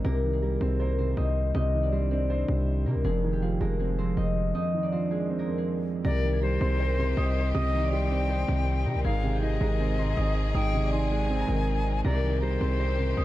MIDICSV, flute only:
0, 0, Header, 1, 2, 480
1, 0, Start_track
1, 0, Key_signature, -3, "minor"
1, 0, Tempo, 375000
1, 59, Time_signature, 4, 2, 24, 8
1, 16957, End_track
2, 0, Start_track
2, 0, Title_t, "Flute"
2, 0, Program_c, 0, 73
2, 7742, Note_on_c, 0, 74, 114
2, 8192, Note_off_c, 0, 74, 0
2, 8221, Note_on_c, 0, 72, 100
2, 9609, Note_off_c, 0, 72, 0
2, 9657, Note_on_c, 0, 75, 111
2, 10109, Note_off_c, 0, 75, 0
2, 10138, Note_on_c, 0, 79, 102
2, 11528, Note_off_c, 0, 79, 0
2, 11580, Note_on_c, 0, 77, 100
2, 12031, Note_off_c, 0, 77, 0
2, 12055, Note_on_c, 0, 75, 89
2, 13446, Note_off_c, 0, 75, 0
2, 13499, Note_on_c, 0, 79, 118
2, 13950, Note_off_c, 0, 79, 0
2, 13981, Note_on_c, 0, 80, 94
2, 15369, Note_off_c, 0, 80, 0
2, 15420, Note_on_c, 0, 74, 108
2, 15871, Note_off_c, 0, 74, 0
2, 15894, Note_on_c, 0, 72, 101
2, 16957, Note_off_c, 0, 72, 0
2, 16957, End_track
0, 0, End_of_file